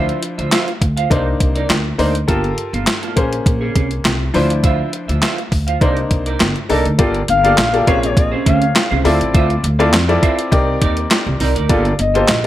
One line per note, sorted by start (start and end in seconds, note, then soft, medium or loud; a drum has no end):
0.00 0.61 F3 medium
0.00 0.58 D4 medium
0.00 0.58 E4 medium
0.00 0.20 F4 medium
0.00 0.21 C5 loud
0.00 0.58 C5 loud
0.00 0.21 E5 medium
0.09 closed hi-hat soft
0.23 muted clean electric guitar stroke soft
0.23 closed hi-hat medium
0.38 0.49 D2 medium
0.38 0.50 F4 soft
0.38 0.51 C5 medium
0.38 0.50 E5 medium
0.38 closed hi-hat soft
0.51 0.69 F4 loud
0.51 0.67 C5 medium
0.51 0.66 E5 loud
0.51 snare loud
0.51 clap medium
0.51 closed hi-hat loud
0.67 muted clean electric guitar stroke medium
0.67 closed hi-hat soft
0.81 1.04 D2 medium
0.81 muted clean electric guitar stroke soft
0.81 kick medium
0.81 closed hi-hat medium
0.97 1.10 F4 soft
0.97 1.10 C5 medium
0.97 1.09 F5 medium
0.97 closed hi-hat medium
1.10 1.34 C2 loud
1.10 1.82 A#3 medium
1.10 1.82 D4 medium
1.10 1.28 D#4 medium
1.10 1.82 D#4 medium
1.10 1.26 A#4 medium
1.10 1.82 C5 medium
1.10 1.25 D5 medium
1.10 kick loud
1.10 closed hi-hat medium
1.26 muted clean electric guitar stroke soft
1.40 1.63 C2 medium
1.40 muted clean electric guitar stroke soft
1.40 kick medium
1.40 closed hi-hat medium
1.55 1.68 D#4 soft
1.55 1.68 A#4 medium
1.55 1.68 D5 medium
1.55 closed hi-hat soft
1.70 1.93 D2 medium
1.70 muted clean electric guitar stroke soft
1.70 snare loud
1.70 clap loud
1.70 closed hi-hat medium
1.85 muted clean electric guitar stroke soft
1.98 2.22 D2 medium
1.98 2.13 A#3 medium
1.98 2.13 D4 medium
1.98 2.16 D#4 medium
1.98 2.13 D#4 medium
1.98 2.15 A#4 medium
1.98 2.13 C5 loud
1.98 2.13 D5 medium
1.98 open hi-hat medium
2.14 muted clean electric guitar stroke soft
2.14 closed hi-hat soft
2.28 2.51 G1 loud
2.28 2.45 A#3 medium
2.28 2.82 F4 medium
2.28 2.43 F4 medium
2.28 2.82 G4 medium
2.28 2.82 A4 medium
2.28 2.42 A4 loud
2.28 2.82 A#4 medium
2.28 kick loud
2.28 closed hi-hat medium
2.43 muted clean electric guitar stroke soft
2.43 closed hi-hat soft
2.58 muted clean electric guitar stroke soft
2.58 closed hi-hat medium
2.73 2.84 G1 medium
2.73 2.86 A#3 medium
2.73 2.86 F4 medium
2.73 2.85 A4 medium
2.73 closed hi-hat medium
2.87 muted clean electric guitar stroke soft
2.87 snare loud
2.87 clap medium
2.87 closed hi-hat loud
3.02 3.16 A#3 medium
3.02 3.16 F4 medium
3.02 3.17 A4 medium
3.02 closed hi-hat soft
3.16 3.40 A#1 medium
3.16 4.11 A#3 medium
3.16 4.11 C#4 medium
3.16 4.11 G#4 medium
3.16 4.11 C5 medium
3.16 muted clean electric guitar stroke soft
3.16 kick medium
3.16 closed hi-hat medium
3.32 muted clean electric guitar stroke soft
3.32 closed hi-hat medium
3.46 3.69 A#1 medium
3.46 muted clean electric guitar stroke soft
3.46 kick loud
3.46 closed hi-hat medium
3.61 3.74 C#4 medium
3.61 3.75 G#4 medium
3.61 3.75 C#5 medium
3.75 3.99 C2 medium
3.75 3.89 C#4 medium
3.75 3.89 G#4 medium
3.75 3.90 C#5 medium
3.75 kick medium
3.75 closed hi-hat medium
3.91 muted clean electric guitar stroke soft
3.91 closed hi-hat soft
4.05 4.28 C2 medium
4.05 snare loud
4.05 clap loud
4.05 closed hi-hat medium
4.20 muted clean electric guitar stroke medium
4.34 4.80 D2 medium
4.34 5.29 F3 medium
4.34 5.29 D4 medium
4.34 5.29 E4 medium
4.34 4.51 F4 medium
4.34 5.29 C5 loud
4.34 4.50 C5 medium
4.34 4.48 E5 medium
4.34 open hi-hat medium
4.50 muted clean electric guitar stroke medium
4.50 closed hi-hat medium
4.63 4.91 F4 medium
4.63 4.91 C5 medium
4.63 4.92 E5 medium
4.63 kick loud
4.63 closed hi-hat medium
4.93 muted clean electric guitar stroke soft
4.93 closed hi-hat medium
5.08 5.20 D2 medium
5.08 5.21 F4 soft
5.08 5.21 C5 medium
5.08 5.21 E5 medium
5.08 closed hi-hat soft
5.22 5.40 F4 medium
5.22 5.37 C5 medium
5.22 5.36 E5 loud
5.22 snare loud
5.22 clap medium
5.22 closed hi-hat loud
5.37 muted clean electric guitar stroke medium
5.37 closed hi-hat soft
5.51 5.75 D2 medium
5.51 muted clean electric guitar stroke soft
5.51 kick medium
5.51 open hi-hat medium
5.67 5.80 F4 soft
5.67 5.80 C5 medium
5.67 5.79 F5 medium
5.67 closed hi-hat medium
5.81 6.04 C2 medium
5.81 6.53 A#3 medium
5.81 6.53 D4 medium
5.81 5.98 D#4 medium
5.81 6.53 D#4 medium
5.81 5.97 A#4 medium
5.81 6.53 C5 medium
5.81 5.96 D5 medium
5.81 kick loud
5.81 closed hi-hat medium
5.97 muted clean electric guitar stroke soft
5.97 closed hi-hat soft
6.11 6.34 C2 medium
6.11 muted clean electric guitar stroke soft
6.11 kick medium
6.11 closed hi-hat medium
6.26 6.39 D#4 medium
6.26 6.39 A#4 medium
6.26 6.38 D5 medium
6.26 closed hi-hat soft
6.40 6.53 G1 medium
6.40 muted clean electric guitar stroke soft
6.40 snare loud
6.40 clap medium
6.40 closed hi-hat medium
6.56 muted clean electric guitar stroke soft
6.56 closed hi-hat soft
6.69 6.82 C2 medium
6.69 6.84 A#3 medium
6.69 6.84 D4 medium
6.69 6.87 D#4 medium
6.69 6.84 D#4 medium
6.69 6.84 A4 medium
6.69 6.85 A#4 medium
6.69 6.84 D5 medium
6.69 open hi-hat medium
6.85 6.96 D2 medium
6.85 muted clean electric guitar stroke soft
6.85 closed hi-hat soft
6.98 7.22 G1 loud
6.98 7.19 A#3 medium
6.98 7.16 A#3 medium
6.98 7.19 F4 medium
6.98 7.14 F4 medium
6.98 7.19 G4 medium
6.98 7.20 A4 medium
6.98 7.14 A4 medium
6.98 7.20 D5 medium
6.98 kick loud
6.98 closed hi-hat loud
7.14 muted clean electric guitar stroke soft
7.14 closed hi-hat soft
7.28 7.51 G1 loud
7.28 7.99 F5 loud
7.28 muted clean electric guitar stroke soft
7.28 closed hi-hat medium
7.44 7.56 A#3 medium
7.44 7.56 A#3 soft
7.44 7.57 F4 medium
7.44 7.56 F4 medium
7.44 7.57 G4 medium
7.44 7.56 A4 medium
7.44 7.57 A4 medium
7.44 7.57 D5 medium
7.44 closed hi-hat medium
7.58 7.81 A#1 loud
7.58 muted clean electric guitar stroke soft
7.58 snare loud
7.58 clap medium
7.58 closed hi-hat loud
7.73 7.87 A#3 medium
7.73 7.86 F4 medium
7.73 7.88 G4 medium
7.73 7.88 A4 medium
7.73 7.88 D5 medium
7.73 muted clean electric guitar stroke medium
7.73 closed hi-hat soft
7.87 8.33 A#1 loud
7.87 8.82 C3 medium
7.87 8.04 C#4 medium
7.87 8.82 F4 medium
7.87 8.82 G#4 medium
7.87 8.03 G#4 medium
7.87 8.82 A#4 medium
7.87 8.02 C5 loud
7.87 8.82 C#5 medium
7.87 kick medium
7.87 closed hi-hat medium
8.03 8.17 C#5 medium
8.03 muted clean electric guitar stroke medium
8.03 closed hi-hat medium
8.16 8.31 D#5 loud
8.16 muted clean electric guitar stroke soft
8.16 kick loud
8.16 closed hi-hat medium
8.32 8.44 C#4 medium
8.32 8.45 G#4 medium
8.32 8.44 C5 medium
8.46 8.69 D2 medium
8.46 8.63 C#4 medium
8.46 8.61 G#4 loud
8.46 8.60 C5 medium
8.46 9.01 F5 loud
8.46 kick medium
8.46 closed hi-hat medium
8.61 muted clean electric guitar stroke soft
8.61 closed hi-hat soft
8.75 muted clean electric guitar stroke soft
8.75 snare loud
8.75 clap loud
8.75 closed hi-hat loud
8.91 9.02 C2 medium
8.91 9.07 C#4 medium
8.91 9.04 G#4 medium
8.91 9.04 C5 medium
9.04 9.17 D2 loud
9.04 9.64 C4 medium
9.04 9.64 E4 medium
9.04 9.18 F4 medium
9.04 9.64 F4 medium
9.04 9.64 A4 medium
9.04 9.19 C5 medium
9.04 9.64 D5 medium
9.04 9.19 E5 medium
9.04 open hi-hat medium
9.21 9.31 A1 medium
9.21 closed hi-hat medium
9.34 9.57 D2 loud
9.34 9.51 F4 loud
9.34 9.50 C5 loud
9.34 9.49 E5 loud
9.34 kick loud
9.34 closed hi-hat loud
9.50 muted clean electric guitar stroke medium
9.50 closed hi-hat soft
9.64 9.93 D2 loud
9.64 muted clean electric guitar stroke soft
9.64 closed hi-hat medium
9.79 9.92 C4 medium
9.79 9.92 E4 medium
9.79 9.92 F4 medium
9.79 9.92 A4 medium
9.79 9.92 C5 medium
9.79 9.92 D5 loud
9.79 9.91 F5 medium
9.79 closed hi-hat soft
9.93 10.16 F2 loud
9.93 muted clean electric guitar stroke medium
9.93 snare loud
9.93 clap medium
9.93 closed hi-hat loud
10.08 10.50 C4 medium
10.08 10.52 E4 medium
10.08 10.52 F4 medium
10.08 10.52 A4 medium
10.08 10.51 D5 loud
10.08 muted clean electric guitar stroke medium
10.08 closed hi-hat soft
10.22 10.40 F4 medium
10.22 10.38 C5 loud
10.22 10.37 E5 loud
10.22 kick medium
10.22 closed hi-hat medium
10.38 muted clean electric guitar stroke medium
10.38 closed hi-hat medium
10.52 10.75 C2 loud
10.52 11.46 C4 medium
10.52 11.46 D#4 medium
10.52 11.46 G4 medium
10.52 11.47 A#4 medium
10.52 11.47 D5 loud
10.52 kick loud
10.52 closed hi-hat medium
10.67 muted clean electric guitar stroke soft
10.81 11.05 D#2 medium
10.81 10.99 D#4 medium
10.81 10.97 A#4 medium
10.81 10.96 D5 medium
10.81 kick medium
10.81 closed hi-hat medium
10.97 muted clean electric guitar stroke soft
10.97 closed hi-hat soft
11.11 muted clean electric guitar stroke soft
11.11 snare loud
11.11 clap loud
11.11 closed hi-hat medium
11.26 11.37 C2 medium
11.26 muted clean electric guitar stroke medium
11.40 11.53 C2 medium
11.40 11.56 D#4 medium
11.40 11.55 A#4 loud
11.40 11.54 D5 loud
11.40 open hi-hat medium
11.55 11.67 D2 medium
11.55 11.69 D#4 medium
11.55 11.68 A#4 medium
11.55 11.68 D5 medium
11.55 closed hi-hat medium
11.69 11.93 G1 loud
11.69 11.90 A#3 medium
11.69 11.87 A#3 medium
11.69 11.90 F4 medium
11.69 11.85 F4 loud
11.69 11.90 G4 medium
11.69 11.90 A4 medium
11.69 11.84 A4 loud
11.69 11.90 D5 loud
11.69 kick loud
11.69 closed hi-hat medium
11.85 muted clean electric guitar stroke soft
11.85 closed hi-hat soft
11.99 12.22 G1 loud
11.99 12.47 D#5 loud
11.99 muted clean electric guitar stroke soft
11.99 closed hi-hat medium
12.14 12.27 A#3 medium
12.14 12.27 F4 medium
12.14 12.27 G4 medium
12.14 12.27 A4 medium
12.14 12.28 C5 medium
12.14 closed hi-hat medium
12.28 12.47 A#1 loud
12.28 muted clean electric guitar stroke soft
12.28 snare loud
12.28 clap medium
12.28 closed hi-hat loud
12.44 muted clean electric guitar stroke soft